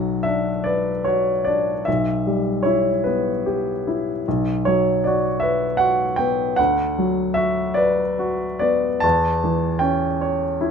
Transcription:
0, 0, Header, 1, 2, 480
1, 0, Start_track
1, 0, Key_signature, 2, "minor"
1, 0, Tempo, 804290
1, 1114, Time_signature, 6, 3, 24, 8
1, 2541, Tempo, 775194
1, 4461, Tempo, 836820
1, 5421, Tempo, 783290
1, 6449, End_track
2, 0, Start_track
2, 0, Title_t, "Grand piano"
2, 0, Program_c, 0, 0
2, 0, Control_c, 0, 64, 127
2, 0, Note_on_c, 0, 35, 34
2, 0, Note_on_c, 0, 54, 28
2, 0, Note_on_c, 0, 78, 54
2, 137, Note_on_c, 0, 76, 52
2, 140, Note_off_c, 0, 78, 0
2, 153, Note_on_c, 0, 62, 29
2, 296, Note_off_c, 0, 54, 0
2, 381, Note_on_c, 0, 74, 52
2, 386, Note_off_c, 0, 76, 0
2, 395, Note_on_c, 0, 71, 33
2, 541, Note_off_c, 0, 62, 0
2, 624, Note_on_c, 0, 73, 51
2, 631, Note_off_c, 0, 74, 0
2, 639, Note_on_c, 0, 66, 31
2, 784, Note_off_c, 0, 71, 0
2, 862, Note_on_c, 0, 74, 49
2, 872, Note_off_c, 0, 73, 0
2, 879, Note_on_c, 0, 62, 27
2, 1022, Note_off_c, 0, 66, 0
2, 1080, Note_off_c, 0, 35, 0
2, 1105, Note_on_c, 0, 76, 52
2, 1106, Note_off_c, 0, 74, 0
2, 1114, Note_off_c, 0, 62, 0
2, 1121, Note_on_c, 0, 35, 36
2, 1125, Control_c, 0, 64, 0
2, 1210, Control_c, 0, 64, 127
2, 1353, Note_on_c, 0, 55, 28
2, 1567, Note_on_c, 0, 73, 50
2, 1577, Note_off_c, 0, 76, 0
2, 1585, Note_on_c, 0, 64, 31
2, 1727, Note_off_c, 0, 55, 0
2, 1812, Note_off_c, 0, 73, 0
2, 1813, Note_on_c, 0, 71, 40
2, 1829, Note_on_c, 0, 59, 32
2, 1966, Note_off_c, 0, 64, 0
2, 2057, Note_off_c, 0, 71, 0
2, 2066, Note_on_c, 0, 67, 30
2, 2209, Note_off_c, 0, 59, 0
2, 2312, Note_on_c, 0, 64, 28
2, 2448, Note_off_c, 0, 67, 0
2, 2521, Note_off_c, 0, 35, 0
2, 2547, Note_off_c, 0, 64, 0
2, 2551, Control_c, 0, 64, 0
2, 2555, Note_on_c, 0, 35, 36
2, 2645, Control_c, 0, 64, 127
2, 2785, Note_on_c, 0, 73, 57
2, 2798, Note_on_c, 0, 54, 30
2, 3023, Note_off_c, 0, 73, 0
2, 3026, Note_on_c, 0, 74, 42
2, 3042, Note_on_c, 0, 66, 30
2, 3169, Note_off_c, 0, 54, 0
2, 3246, Note_on_c, 0, 76, 53
2, 3257, Note_off_c, 0, 74, 0
2, 3265, Note_on_c, 0, 71, 32
2, 3405, Note_off_c, 0, 66, 0
2, 3479, Note_on_c, 0, 78, 60
2, 3485, Note_off_c, 0, 76, 0
2, 3496, Note_on_c, 0, 66, 33
2, 3638, Note_off_c, 0, 71, 0
2, 3721, Note_on_c, 0, 79, 54
2, 3726, Note_off_c, 0, 78, 0
2, 3737, Note_on_c, 0, 59, 30
2, 3882, Note_off_c, 0, 66, 0
2, 3959, Note_off_c, 0, 35, 0
2, 3969, Note_on_c, 0, 78, 62
2, 3971, Note_off_c, 0, 79, 0
2, 3979, Note_off_c, 0, 59, 0
2, 3983, Note_on_c, 0, 38, 37
2, 3988, Control_c, 0, 64, 0
2, 4083, Control_c, 0, 64, 127
2, 4230, Note_on_c, 0, 54, 33
2, 4450, Note_on_c, 0, 76, 59
2, 4458, Note_off_c, 0, 78, 0
2, 4465, Note_on_c, 0, 66, 32
2, 4603, Note_off_c, 0, 54, 0
2, 4681, Note_on_c, 0, 74, 58
2, 4684, Note_off_c, 0, 76, 0
2, 4698, Note_on_c, 0, 71, 35
2, 4833, Note_off_c, 0, 66, 0
2, 4938, Note_on_c, 0, 66, 36
2, 5083, Note_off_c, 0, 71, 0
2, 5161, Note_off_c, 0, 74, 0
2, 5170, Note_on_c, 0, 74, 54
2, 5180, Note_on_c, 0, 59, 34
2, 5332, Note_off_c, 0, 66, 0
2, 5402, Note_off_c, 0, 38, 0
2, 5405, Note_on_c, 0, 81, 70
2, 5417, Note_off_c, 0, 74, 0
2, 5422, Note_off_c, 0, 59, 0
2, 5423, Note_on_c, 0, 40, 39
2, 5434, Control_c, 0, 64, 0
2, 5536, Control_c, 0, 64, 127
2, 5669, Note_on_c, 0, 52, 35
2, 5886, Note_on_c, 0, 79, 55
2, 5887, Note_off_c, 0, 81, 0
2, 5898, Note_on_c, 0, 61, 35
2, 6042, Note_off_c, 0, 52, 0
2, 6145, Note_on_c, 0, 73, 39
2, 6281, Note_off_c, 0, 61, 0
2, 6387, Note_on_c, 0, 64, 37
2, 6449, Note_off_c, 0, 40, 0
2, 6449, Note_off_c, 0, 64, 0
2, 6449, Note_off_c, 0, 73, 0
2, 6449, Note_off_c, 0, 79, 0
2, 6449, End_track
0, 0, End_of_file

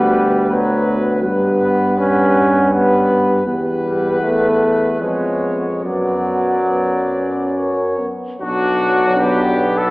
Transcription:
0, 0, Header, 1, 6, 480
1, 0, Start_track
1, 0, Key_signature, 2, "minor"
1, 0, Tempo, 738007
1, 807, Time_signature, 3, 2, 24, 8
1, 2739, Tempo, 795756
1, 3219, Tempo, 852273
1, 5139, Tempo, 772201
1, 6064, End_track
2, 0, Start_track
2, 0, Title_t, "Trumpet section"
2, 0, Program_c, 0, 61
2, 0, Note_on_c, 0, 71, 61
2, 309, Note_off_c, 0, 71, 0
2, 326, Note_on_c, 0, 71, 63
2, 793, Note_off_c, 0, 71, 0
2, 801, Note_on_c, 0, 71, 60
2, 1661, Note_off_c, 0, 71, 0
2, 1772, Note_on_c, 0, 71, 60
2, 2243, Note_off_c, 0, 71, 0
2, 2252, Note_on_c, 0, 71, 59
2, 3197, Note_off_c, 0, 71, 0
2, 3225, Note_on_c, 0, 73, 53
2, 3689, Note_on_c, 0, 74, 49
2, 3699, Note_off_c, 0, 73, 0
2, 4642, Note_off_c, 0, 74, 0
2, 4662, Note_on_c, 0, 73, 47
2, 4942, Note_off_c, 0, 73, 0
2, 5137, Note_on_c, 0, 66, 84
2, 5599, Note_off_c, 0, 66, 0
2, 5625, Note_on_c, 0, 67, 82
2, 5981, Note_off_c, 0, 67, 0
2, 5987, Note_on_c, 0, 69, 80
2, 6064, Note_off_c, 0, 69, 0
2, 6064, End_track
3, 0, Start_track
3, 0, Title_t, "French horn section"
3, 0, Program_c, 1, 60
3, 0, Note_on_c, 1, 66, 62
3, 232, Note_off_c, 1, 66, 0
3, 342, Note_on_c, 1, 66, 59
3, 801, Note_off_c, 1, 66, 0
3, 811, Note_on_c, 1, 67, 63
3, 1758, Note_off_c, 1, 67, 0
3, 1766, Note_on_c, 1, 67, 57
3, 2240, Note_off_c, 1, 67, 0
3, 2252, Note_on_c, 1, 67, 51
3, 2715, Note_off_c, 1, 67, 0
3, 2738, Note_on_c, 1, 69, 55
3, 3219, Note_off_c, 1, 69, 0
3, 3219, Note_on_c, 1, 71, 55
3, 3686, Note_off_c, 1, 71, 0
3, 3695, Note_on_c, 1, 71, 53
3, 4645, Note_off_c, 1, 71, 0
3, 4670, Note_on_c, 1, 70, 46
3, 4952, Note_off_c, 1, 70, 0
3, 5144, Note_on_c, 1, 62, 71
3, 6064, Note_off_c, 1, 62, 0
3, 6064, End_track
4, 0, Start_track
4, 0, Title_t, "Euphonium"
4, 0, Program_c, 2, 58
4, 0, Note_on_c, 2, 59, 62
4, 310, Note_off_c, 2, 59, 0
4, 338, Note_on_c, 2, 59, 53
4, 798, Note_off_c, 2, 59, 0
4, 807, Note_on_c, 2, 59, 60
4, 1753, Note_off_c, 2, 59, 0
4, 1775, Note_on_c, 2, 59, 54
4, 2244, Note_off_c, 2, 59, 0
4, 2252, Note_on_c, 2, 59, 55
4, 3197, Note_off_c, 2, 59, 0
4, 3215, Note_on_c, 2, 59, 43
4, 3595, Note_off_c, 2, 59, 0
4, 3691, Note_on_c, 2, 59, 47
4, 4123, Note_off_c, 2, 59, 0
4, 4173, Note_on_c, 2, 59, 52
4, 4423, Note_on_c, 2, 61, 56
4, 4431, Note_off_c, 2, 59, 0
4, 4898, Note_on_c, 2, 59, 47
4, 4906, Note_off_c, 2, 61, 0
4, 5128, Note_off_c, 2, 59, 0
4, 5131, Note_on_c, 2, 54, 67
4, 6064, Note_off_c, 2, 54, 0
4, 6064, End_track
5, 0, Start_track
5, 0, Title_t, "Trombone"
5, 0, Program_c, 3, 57
5, 0, Note_on_c, 3, 55, 76
5, 340, Note_on_c, 3, 54, 70
5, 349, Note_off_c, 3, 55, 0
5, 809, Note_off_c, 3, 54, 0
5, 1048, Note_on_c, 3, 59, 68
5, 1290, Note_on_c, 3, 61, 78
5, 1300, Note_off_c, 3, 59, 0
5, 1770, Note_on_c, 3, 59, 64
5, 1779, Note_off_c, 3, 61, 0
5, 2251, Note_off_c, 3, 59, 0
5, 2489, Note_on_c, 3, 55, 63
5, 2721, Note_off_c, 3, 55, 0
5, 2739, Note_on_c, 3, 57, 69
5, 3220, Note_on_c, 3, 56, 67
5, 3228, Note_off_c, 3, 57, 0
5, 3696, Note_off_c, 3, 56, 0
5, 3699, Note_on_c, 3, 54, 68
5, 4885, Note_off_c, 3, 54, 0
5, 5138, Note_on_c, 3, 62, 76
5, 5616, Note_on_c, 3, 59, 78
5, 5625, Note_off_c, 3, 62, 0
5, 6064, Note_off_c, 3, 59, 0
5, 6064, End_track
6, 0, Start_track
6, 0, Title_t, "Tuba"
6, 0, Program_c, 4, 58
6, 0, Note_on_c, 4, 38, 62
6, 804, Note_on_c, 4, 43, 64
6, 814, Note_off_c, 4, 38, 0
6, 2248, Note_off_c, 4, 43, 0
6, 2252, Note_on_c, 4, 40, 60
6, 3219, Note_on_c, 4, 41, 51
6, 3227, Note_off_c, 4, 40, 0
6, 3693, Note_on_c, 4, 42, 52
6, 3701, Note_off_c, 4, 41, 0
6, 4948, Note_off_c, 4, 42, 0
6, 5137, Note_on_c, 4, 35, 74
6, 6064, Note_off_c, 4, 35, 0
6, 6064, End_track
0, 0, End_of_file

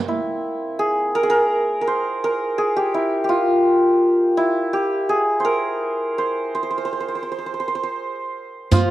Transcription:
0, 0, Header, 1, 5, 480
1, 0, Start_track
1, 0, Tempo, 719424
1, 53, Time_signature, 6, 3, 24, 8
1, 5942, End_track
2, 0, Start_track
2, 0, Title_t, "Santur"
2, 0, Program_c, 0, 15
2, 0, Note_on_c, 0, 58, 81
2, 0, Note_on_c, 0, 60, 83
2, 55, Note_on_c, 0, 64, 62
2, 528, Note_on_c, 0, 68, 76
2, 767, Note_on_c, 0, 70, 89
2, 820, Note_off_c, 0, 68, 0
2, 823, Note_on_c, 0, 68, 68
2, 863, Note_off_c, 0, 70, 0
2, 866, Note_on_c, 0, 70, 89
2, 1207, Note_off_c, 0, 70, 0
2, 1210, Note_on_c, 0, 70, 64
2, 1251, Note_off_c, 0, 58, 0
2, 1251, Note_on_c, 0, 72, 70
2, 1304, Note_off_c, 0, 60, 0
2, 1492, Note_off_c, 0, 70, 0
2, 1495, Note_on_c, 0, 70, 77
2, 1719, Note_off_c, 0, 68, 0
2, 1722, Note_on_c, 0, 68, 72
2, 1844, Note_on_c, 0, 67, 73
2, 1884, Note_off_c, 0, 68, 0
2, 1961, Note_off_c, 0, 64, 0
2, 1964, Note_on_c, 0, 64, 63
2, 2160, Note_off_c, 0, 67, 0
2, 2163, Note_on_c, 0, 67, 56
2, 2195, Note_on_c, 0, 65, 77
2, 2235, Note_off_c, 0, 64, 0
2, 2918, Note_on_c, 0, 64, 76
2, 2958, Note_off_c, 0, 65, 0
2, 3011, Note_off_c, 0, 72, 0
2, 3154, Note_off_c, 0, 67, 0
2, 3157, Note_on_c, 0, 67, 74
2, 3385, Note_off_c, 0, 70, 0
2, 3398, Note_on_c, 0, 68, 77
2, 3438, Note_off_c, 0, 67, 0
2, 3602, Note_on_c, 0, 72, 60
2, 3634, Note_on_c, 0, 70, 81
2, 4122, Note_off_c, 0, 72, 0
2, 4125, Note_on_c, 0, 72, 68
2, 4366, Note_off_c, 0, 72, 0
2, 4368, Note_on_c, 0, 72, 66
2, 4420, Note_off_c, 0, 72, 0
2, 4423, Note_on_c, 0, 72, 49
2, 4471, Note_off_c, 0, 72, 0
2, 4474, Note_on_c, 0, 72, 53
2, 4519, Note_off_c, 0, 72, 0
2, 4522, Note_on_c, 0, 72, 52
2, 4567, Note_off_c, 0, 72, 0
2, 4570, Note_on_c, 0, 72, 60
2, 4619, Note_off_c, 0, 72, 0
2, 4622, Note_on_c, 0, 72, 43
2, 4670, Note_off_c, 0, 72, 0
2, 4673, Note_on_c, 0, 72, 46
2, 4724, Note_off_c, 0, 72, 0
2, 4726, Note_on_c, 0, 72, 43
2, 4769, Note_off_c, 0, 72, 0
2, 4772, Note_on_c, 0, 72, 49
2, 4819, Note_off_c, 0, 72, 0
2, 4821, Note_on_c, 0, 72, 46
2, 4879, Note_off_c, 0, 72, 0
2, 4882, Note_on_c, 0, 72, 54
2, 4925, Note_off_c, 0, 72, 0
2, 4928, Note_on_c, 0, 72, 42
2, 4976, Note_off_c, 0, 72, 0
2, 4979, Note_on_c, 0, 72, 49
2, 5027, Note_off_c, 0, 72, 0
2, 5030, Note_on_c, 0, 72, 45
2, 5067, Note_off_c, 0, 72, 0
2, 5070, Note_on_c, 0, 72, 56
2, 5121, Note_off_c, 0, 72, 0
2, 5123, Note_on_c, 0, 72, 55
2, 5169, Note_off_c, 0, 72, 0
2, 5171, Note_on_c, 0, 72, 57
2, 5224, Note_off_c, 0, 72, 0
2, 5227, Note_on_c, 0, 72, 53
2, 5245, Note_off_c, 0, 64, 0
2, 5420, Note_off_c, 0, 68, 0
2, 5524, Note_off_c, 0, 70, 0
2, 5824, Note_on_c, 0, 65, 76
2, 5942, Note_off_c, 0, 65, 0
2, 5942, Note_off_c, 0, 72, 0
2, 5942, End_track
3, 0, Start_track
3, 0, Title_t, "Oud"
3, 0, Program_c, 1, 24
3, 5815, Note_on_c, 1, 53, 68
3, 5942, Note_off_c, 1, 53, 0
3, 5942, End_track
4, 0, Start_track
4, 0, Title_t, "Riq"
4, 5815, Note_on_c, 9, 54, 55
4, 5882, Note_off_c, 9, 54, 0
4, 5942, End_track
5, 0, Start_track
5, 0, Title_t, "Tombak"
5, 5819, Note_on_c, 9, 64, 69
5, 5885, Note_off_c, 9, 64, 0
5, 5942, End_track
0, 0, End_of_file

